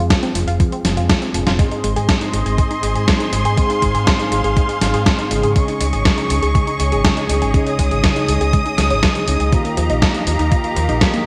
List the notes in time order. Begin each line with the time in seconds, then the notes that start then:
Already playing: G#3 C4 F4 G#4
0.10 F3, kick, snare, closed hi-hat
0.23 C4, closed hi-hat
0.35 F1 F3, closed hi-hat
0.47 F1 F4, closed hi-hat
0.60 F3, kick, closed hi-hat
0.72 C4, closed hi-hat
0.85 F1 F3 G#3 C4 F4 G#4, snare, closed hi-hat
0.97 F2 F4, closed hi-hat
1.10 F3, kick, snare, closed hi-hat
1.22 C4, closed hi-hat
1.34 F1 G#2 F3 G#3 C4 F4 G#4, closed hi-hat
1.47 F1 F4, snare, closed hi-hat
1.59 G#2 G#3 C4 D#4 G#4 C5 D#5 C6, kick, closed hi-hat
1.71 D#4, closed hi-hat
1.84 G#1 G#3, closed hi-hat
1.96 G#2 G#4, closed hi-hat
2.09 G#3, kick, snare, closed hi-hat
2.21 D#4, closed hi-hat
2.33 G#1 G#3, closed hi-hat
2.46 G#1 G#4, closed hi-hat
2.58 G#3, kick, closed hi-hat
2.71 D#4, closed hi-hat
2.83 G#1 G#3, closed hi-hat
2.95 G#2 G#4, closed hi-hat
3.08 G#2 G#3 C4 D#4 G#4, kick, snare, closed hi-hat
3.20 D#4, closed hi-hat
3.33 G#1 G#3, closed hi-hat
3.45 G#2 G#4, closed hi-hat
3.57 G#2 G#3 C4 D#4 G#4 F5, kick, closed hi-hat
3.70 D#4, closed hi-hat
3.82 G#1 G#3, kick, closed hi-hat
3.95 G#2 G#4, closed hi-hat
4.07 G#3, kick, snare, closed hi-hat
4.19 D#4, closed hi-hat
4.32 G#1 G#3, closed hi-hat
4.44 G#1 G#4, closed hi-hat
4.57 G#3, kick, closed hi-hat
4.69 D#4, closed hi-hat
4.81 G#1 G#2 G#3 C4 D#4 G#4, snare, closed hi-hat
4.94 G#2 G#4, closed hi-hat
5.06 G#3, kick, snare, closed hi-hat
5.19 D#4, closed hi-hat
5.31 G#1 C#3 G#3 C4 D#4 G#4, closed hi-hat
5.43 G#2 G#4, closed hi-hat
5.56 C#3 G#3 C#4 D#4 G#4 C#5 D#5 C#6, kick, closed hi-hat
5.68 D#4, closed hi-hat
5.81 C#2 G#3, closed hi-hat
5.93 G#1 G#4, closed hi-hat
6.05 G#3, kick, snare, closed hi-hat
6.18 D#4, closed hi-hat
6.30 C#2 G#3, closed hi-hat
6.43 C#2 G#4, closed hi-hat
6.55 G#3, kick, closed hi-hat
6.67 D#4, closed hi-hat
6.80 C#2 G#3, closed hi-hat
6.92 G#1 G#4, closed hi-hat
7.04 C#3 G#3 C#4 D#4 G#4, kick, snare, closed hi-hat
7.17 D#4, closed hi-hat
7.29 C#2 G#3, closed hi-hat
7.42 G#1 G#4, closed hi-hat
7.54 C#3 G#3 C#4 D#4 G#4 D#6, kick, closed hi-hat
7.67 D#4, closed hi-hat
7.79 C#2 G#3, kick, closed hi-hat
7.91 G#1 G#4, closed hi-hat
8.04 G#3, kick, snare, closed hi-hat
8.16 D#4, closed hi-hat
8.28 C#2 G#3, closed hi-hat
8.41 C#2 G#4, closed hi-hat
8.53 G#3, kick, closed hi-hat
8.66 D#4, closed hi-hat
8.78 C#2 C#3 G#3 C#4 D#4 G#4, snare, closed hi-hat
8.90 G#1 C#5, closed hi-hat
9.03 G#3, kick, snare, closed hi-hat
9.15 G#4, closed hi-hat
9.27 C#2 G#3 C#4 D#4 G#4, closed hi-hat
9.40 C#2 G#4, closed hi-hat
9.52 D#3 F3 A#3 D#4 F4 G4 F5 A#5, kick, closed hi-hat
9.65 A#3, closed hi-hat
9.77 D#2 F3, closed hi-hat
9.90 A#1 D#4, closed hi-hat
10.02 F3, kick, snare, closed hi-hat
10.14 A#3, closed hi-hat
10.27 D#2 F3, closed hi-hat
10.39 D#2 D#4, closed hi-hat
10.52 F3, kick, closed hi-hat
10.64 A#3, closed hi-hat
10.76 D#2 F3, closed hi-hat
10.89 A#1 D#4, closed hi-hat
11.01 D#3 F3 A#3 D#4 F4 G4, kick, snare, closed hi-hat
11.14 A#3, closed hi-hat